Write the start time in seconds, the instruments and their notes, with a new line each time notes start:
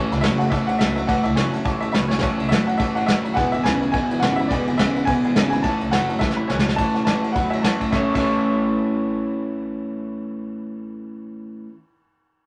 Already playing: steel-string acoustic guitar A2 E3 A3 C#4, upright piano C#5
0.10 upright bass C#2, steel-string acoustic guitar A3 C#4 E4, honky-tonk piano C#5 E5 B5, snare, ride
0.21 upright bass F#1, steel-string acoustic guitar A2 E3 A3 C#4 E4, clean electric guitar F#3, honky-tonk piano C#5 E5 A5, upright piano E5, snare, ride
0.38 steel-string acoustic guitar A3 C#4 E4, honky-tonk piano C#5 E5 A5, upright piano F#5, ride
0.50 upright bass A1, clean electric guitar A2, steel-string acoustic guitar E3 A3 C#4, honky-tonk piano C#5 E5 A5, upright piano E5, kick, ride
0.54 steel-string acoustic guitar E4
0.67 steel-string acoustic guitar C#4 E4, honky-tonk piano C#5 E5 F#5, upright piano F#5, ride
0.71 steel-string acoustic guitar A3
0.79 upright bass C#2, steel-string acoustic guitar A2 E3 A3 C#4 E4, clean electric guitar F#3, honky-tonk piano C#5 E5 A5, upright piano E5, snare, ride
0.95 steel-string acoustic guitar A3 C#4 E4, honky-tonk piano C#5 E5 F#5, upright piano E5, ride
1.07 upright bass A1, steel-string acoustic guitar A2 E3 A3 C#4 E4, honky-tonk piano C#5 E5 A5, upright piano F#5, kick, ride
1.24 upright bass C#2, steel-string acoustic guitar C#4 E4, honky-tonk piano C#5 E5 A5, upright piano E5, ride
1.28 steel-string acoustic guitar A3
1.35 upright bass F#1, steel-string acoustic guitar A2 E3 A3 C#4 E4, clean electric guitar F#3, honky-tonk piano C#5 E5 G#5, upright piano C#5, snare, ride
1.53 steel-string acoustic guitar A3 C#4 E4, honky-tonk piano C#5 E5 A5, ride
1.65 upright bass A1, clean electric guitar A2, steel-string acoustic guitar E3 A3 C#4 E4, honky-tonk piano C#5 E5 A5, kick, ride
1.81 steel-string acoustic guitar A3 C#4 E4, honky-tonk piano C#5 E5 A5, upright piano E5, ride
1.92 upright bass C#2, steel-string acoustic guitar A2 E3 A3 C#4 E4, clean electric guitar F#3, honky-tonk piano C#5 E5 B5, upright piano E5, snare, ride
2.08 steel-string acoustic guitar A3 C#4 E4, upright piano C#5, honky-tonk piano C#5 E5 G#5, snare
2.19 upright bass A1, steel-string acoustic guitar A2 E3 A3 C#4, upright piano C#5, honky-tonk piano C#5 E5 A5, snare
2.23 steel-string acoustic guitar E4, kick, ride
2.37 upright bass C#2, steel-string acoustic guitar A3 C#4 E4, honky-tonk piano C#5 E5 A5, ride
2.49 upright bass F#1, steel-string acoustic guitar A2 E3 A3 C#4 E4, clean electric guitar F#3, honky-tonk piano C#5 E5 F#5, upright piano E5, snare, ride
2.66 steel-string acoustic guitar A3 C#4 E4, honky-tonk piano C#5 E5 A5, upright piano F#5, ride
2.78 upright bass A1, clean electric guitar A2, steel-string acoustic guitar E3 A3 C#4, honky-tonk piano C#5 E5 A5, upright piano E5, kick, ride
2.82 steel-string acoustic guitar E4
2.95 steel-string acoustic guitar A3 C#4 E4, honky-tonk piano C#5 E5 A5, upright piano F#5, ride
3.06 upright bass F#1, steel-string acoustic guitar A2 E3 A3 C#4 E4, clean electric guitar F#3, honky-tonk piano C#5 E5 F#5, upright piano E5, snare, ride
3.24 steel-string acoustic guitar A3 C#4 E4, honky-tonk piano C#5 E5 B5, ride
3.34 upright bass E1, steel-string acoustic guitar E2 B2 E3 G#3 D4 E4, honky-tonk piano B4 E5 G#5, upright piano F#5, kick, ride
3.52 upright bass G#1, steel-string acoustic guitar E3 G#3 D4 E4, honky-tonk piano B4 E5 G#5, upright piano E5, ride
3.64 upright bass D2, steel-string acoustic guitar E2 B2 E3 G#3 D4 E4, clean electric guitar C#3, honky-tonk piano B4 E5 B5, upright piano G#5, snare, ride
3.81 steel-string acoustic guitar E3 G#3 D4 E4, honky-tonk piano B4 E5 G#5, ride
3.92 upright bass E1, clean electric guitar E2 B2, steel-string acoustic guitar E3 G#3 D4 E4, honky-tonk piano B4 E5 G#5, upright piano G#5, kick, ride
4.10 steel-string acoustic guitar E3 G#3 D4 E4, honky-tonk piano B4 E5 G#5, ride
4.20 upright bass G#1, steel-string acoustic guitar E2 B2 E3 G#3 D4 E4, clean electric guitar C#3, honky-tonk piano B4 E5 G#5, upright piano F#5, snare, ride
4.32 upright piano E5 F#5
4.38 steel-string acoustic guitar E3 G#3 D4 E4, honky-tonk piano B4 E5 B5, ride
4.48 upright bass E1, steel-string acoustic guitar E2 B2 E3 G#3 D4 E4, upright piano D5, honky-tonk piano E5, kick, ride
4.52 honky-tonk piano B4 G#5
4.67 upright bass G#1, steel-string acoustic guitar E3 G#3 D4 E4, honky-tonk piano B4 E5 G#5, ride
4.78 upright bass D2, steel-string acoustic guitar E2 B2 E3 G#3 D4, clean electric guitar C#3, honky-tonk piano B4 E5 G#5, upright piano E5, snare, ride
4.82 steel-string acoustic guitar E4
4.96 steel-string acoustic guitar E3 G#3 D4 E4, honky-tonk piano B4 E5 F#5, ride
5.05 upright bass E1, clean electric guitar E2 B2, steel-string acoustic guitar E3 G#3, honky-tonk piano B4 E5 G#5, upright piano G#5, kick, ride
5.10 steel-string acoustic guitar D4 E4
5.24 steel-string acoustic guitar E3 G#3 D4 E4, honky-tonk piano B4 E5 G#5, ride
5.34 upright bass G#1, steel-string acoustic guitar E2 B2 E3 G#3 D4, clean electric guitar C#3, honky-tonk piano B4 E5 G#5, snare, ride
5.38 steel-string acoustic guitar E4
5.50 steel-string acoustic guitar E4, honky-tonk piano B4 E5 B5, upright piano G#5, ride
5.54 steel-string acoustic guitar E3 G#3 D4
5.62 upright bass A1, steel-string acoustic guitar A2 E3, honky-tonk piano C#5 E5 A5, upright piano A5, kick, ride
5.66 steel-string acoustic guitar A3 C#4 E4
5.80 upright bass C#2, steel-string acoustic guitar A3 C#4 E4, honky-tonk piano C#5 E5 A5, ride
5.91 upright bass F#1, steel-string acoustic guitar A2 E3 A3 C#4 E4, clean electric guitar F#3, honky-tonk piano C#5 E5 G#5, upright piano F#5, snare, ride
6.09 steel-string acoustic guitar A3 C#4 E4, honky-tonk piano C#5 E5 A5, ride
6.19 upright bass A1, clean electric guitar A2, steel-string acoustic guitar E3 A3 C#4, honky-tonk piano C#5 E5 A5, upright piano E5, kick, snare
6.24 steel-string acoustic guitar E4
6.31 snare
6.36 steel-string acoustic guitar C#4 E4, honky-tonk piano C#5 E5 B5
6.41 steel-string acoustic guitar A3
6.48 upright bass C#2, steel-string acoustic guitar A2 E3 A3, clean electric guitar F#3, upright piano C#5, honky-tonk piano C#5 E5 G#5, snare
6.52 steel-string acoustic guitar C#4 E4
6.59 snare
6.65 steel-string acoustic guitar C#4 E4, honky-tonk piano C#5 E5 A5, snare
6.69 steel-string acoustic guitar A3
6.76 upright bass A1, steel-string acoustic guitar A2 E3 A3 C#4 E4, honky-tonk piano C#5 E5 A5, upright piano A5, kick, ride
6.94 steel-string acoustic guitar A3 C#4 E4, honky-tonk piano C#5 E5 A5, snare, ride
7.05 upright bass A1, steel-string acoustic guitar A2 E3 A3 C#4 E4, honky-tonk piano C#5 E5 A5, upright piano A5, snare, ride
7.22 steel-string acoustic guitar C#4 E4, honky-tonk piano C#5 E5 A5, ride
7.26 steel-string acoustic guitar A3
7.32 upright bass E2, clean electric guitar A2 F#3, steel-string acoustic guitar E3, honky-tonk piano C#5 E5 B5, upright piano F#5, kick, ride
7.37 steel-string acoustic guitar A3 C#4 E4
7.50 steel-string acoustic guitar E4, honky-tonk piano C#5 E5 G#5, upright piano E5, ride
7.54 steel-string acoustic guitar A3 C#4
7.62 upright bass F#2, steel-string acoustic guitar A2 E3 A3 C#4 E4, honky-tonk piano C#5 E5 F#5, upright piano A5, snare, ride
7.80 steel-string acoustic guitar A3 C#4 E4, honky-tonk piano C#5 E5 A5, kick, ride
7.89 upright bass A1, steel-string acoustic guitar A2 E3, clean electric guitar A3 C#4, honky-tonk piano C#5 E5 A5, upright piano E5, kick, snare
7.94 steel-string acoustic guitar A3, clean electric guitar E4 A4 C#5
7.99 steel-string acoustic guitar C#4 E4
8.12 upright bass A1, steel-string acoustic guitar A2, clean electric guitar A3 C#4, honky-tonk piano C#5 E5, upright piano E5, kick, crash
8.16 steel-string acoustic guitar E3 A3, clean electric guitar E4 A4 C#5, honky-tonk piano A5
8.22 steel-string acoustic guitar C#4 E4